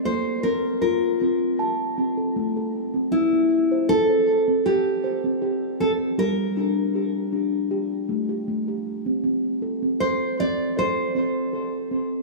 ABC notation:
X:1
M:4/4
L:1/16
Q:1/4=78
K:Aphr
V:1 name="Nylon-string guitar"
c2 B2 B8- B2 z2 | E4 A4 G4 z2 A2 | B12 z4 | z4 c2 d2 c8 |]
V:2 name="Steel tongue drum"
A2 C2 F2 C2 a2 C A A, A2 C | z C2 c C c2 C2 z c C G2 C2 | G2 D2 G2 D2 G2 A, G A, G2 C | C2 A C A2 C2 A2 C2 A2 C2 |]
V:3 name="Steel tongue drum"
B,16 | C16 | G,16 | z16 |]